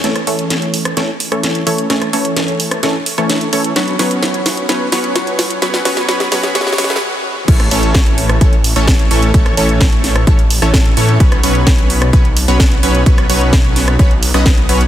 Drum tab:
CC |--------------------------------|--------------------------------|--------------------------------|--------------------------------|
HH |x-x-o-x-x-x-o-x-x---o-x-x-x-o-x-|x-x-o-x-x-x-o-x-x---o-x-x-x-o-x-|x-x-o-x-x-x-o-x-x---o-x-x-x-o-x-|x-x-o-x-x-x-o-x-x---o-x---------|
SD |o-r-----o-----r-o-----r-o-------|o-r-----o-----r-o-----r-o-------|o---o---o---o---o---o---o---o---|o-o-o-o-o-o-o-o-oooooooo--------|
BD |--------------------------------|--------------------------------|--------------------------------|--------------------------------|

CC |x-------------------------------|--------------------------------|--------------------------------|--------------------------------|
HH |x-x-o-x-x-x-o-x-x-x-o-x-x-x-o-x-|x-x-o-x-x-x-o-x-x-x-o---x-x-o-x-|x-x-o-x-x-x-o-x-x-x-o-x-x-x-o-x-|x-x-o-x-x-x-o-x-x-x-o-x-x-x-o-x-|
SD |--r-----o-----r---------o-------|--r-----o---o-r-------r-o-------|--r-----o-----r---------o-------|--r-----o---o-r-------r-o-------|
BD |o-------o-------o-------o-------|o-------o-------o-------o-------|o-------o-------o-------o-------|o-------o-------o-------o-------|